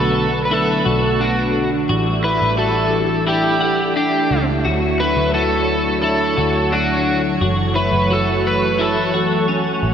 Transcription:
0.00 0.82 B1 medium
0.00 1.87 D3 medium
0.00 1.87 F#3 medium
0.00 1.87 A3 medium
0.00 1.87 B3 medium
0.00 0.51 F#4 medium
0.00 1.87 F#4 medium
0.00 0.45 A4 medium
0.45 0.52 B4 medium
0.51 0.85 E4 medium
0.51 1.23 A4 medium
0.85 1.86 B1 medium
0.85 1.20 F#4 medium
1.20 1.89 D4 medium
1.20 1.69 F#4 medium
1.89 2.39 A1 medium
1.89 4.63 E3 medium
1.89 4.63 G3 medium
1.89 7.37 A3 medium
1.89 4.63 D4 medium
1.89 7.37 E4 medium
1.89 2.23 F#4 medium
2.24 2.57 E4 medium
2.24 2.58 B4 medium
2.42 4.27 A1 medium
2.57 3.26 F#4 medium
2.57 3.23 A4 medium
3.27 3.60 E4 medium
3.27 3.95 G4 medium
3.61 3.96 F#5 medium
3.96 4.65 D4 medium
3.96 4.44 G4 medium
4.31 4.64 C#2 medium
4.65 5.15 D2 medium
4.65 7.39 D3 medium
4.65 9.94 F#3 medium
4.65 4.99 F#4 medium
4.65 9.94 C#5 medium
5.00 5.34 E4 medium
5.00 5.34 B4 medium
5.17 6.33 D2 medium
5.34 6.03 F#4 medium
5.34 6.00 A4 medium
6.02 6.36 E4 medium
6.02 6.73 A4 medium
6.37 7.37 D2 medium
6.37 6.72 F#4 medium
6.72 7.41 D4 medium
6.72 7.20 F#4 medium
7.40 7.90 F#1 medium
7.40 9.94 E3 medium
7.40 9.94 A3 medium
7.40 9.94 F#4 medium
7.40 7.75 F#4 medium
7.75 8.10 E4 medium
7.75 8.11 B4 medium
7.93 9.78 F#1 medium
8.10 8.78 F#4 medium
8.10 8.47 A4 medium
8.47 8.81 B4 medium
8.79 9.13 E4 medium
8.79 9.45 A4 medium
9.14 9.48 F#4 medium
9.48 9.94 C#4 medium
9.83 9.94 A1 medium

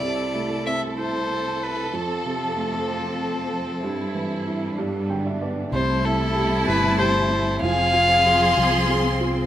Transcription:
0.00 1.89 C2 medium
0.00 1.89 C3 medium
0.00 1.88 E4 medium
0.00 0.66 D5 medium
0.04 3.80 A4 medium
0.34 1.57 A3 soft
0.66 1.89 C4 soft
0.66 0.81 E5 medium
0.98 1.90 E4 medium
0.98 1.64 C5 medium
1.63 1.96 B4 medium
1.91 3.80 F2 medium
1.91 3.79 F2 medium
1.91 3.80 F3 medium
1.91 4.74 C4 medium
1.91 5.10 A4 medium
2.25 3.48 C3 soft
2.56 3.79 A3 soft
2.87 3.80 C4 soft
3.82 5.70 G2 medium
3.82 4.75 G2 medium
3.82 5.71 G3 medium
3.82 4.77 E4 medium
4.15 4.76 E3 soft
4.47 4.77 E4 soft
4.75 5.70 G2 medium
4.75 5.71 B3 soft
4.75 5.71 D4 medium
5.10 5.71 D3 soft
5.10 5.24 G5 soft
5.26 5.40 E5 medium
5.41 5.72 B3 soft
5.41 5.71 D5 soft
5.72 6.63 C2 loud
5.72 7.60 C3 medium
5.72 7.59 C3 medium
5.72 7.60 G3 medium
5.72 7.60 A3 medium
5.72 7.60 E4 medium
5.72 6.06 C5 medium
5.72 7.59 A5 loud
6.04 6.66 E4 medium
6.04 6.66 A4 medium
6.35 6.97 G4 medium
6.67 7.58 G1 loud
6.67 7.29 E4 medium
6.67 6.97 B4 medium
6.98 7.60 G4 medium
6.98 7.58 C5 medium
7.30 7.61 E4 medium
7.61 8.53 F1 loud
7.61 9.46 F3 medium
7.61 9.46 C4 medium
7.61 9.46 F4 medium
7.61 9.46 G#4 medium
7.61 9.16 F5 loud
7.61 8.22 G#5 medium
7.93 8.55 F4 medium
8.25 8.88 G#4 medium
8.25 9.46 C6 loud
8.57 9.46 C2 loud
8.57 9.19 F4 medium
8.90 9.46 G#4 medium
9.20 9.46 F4 medium

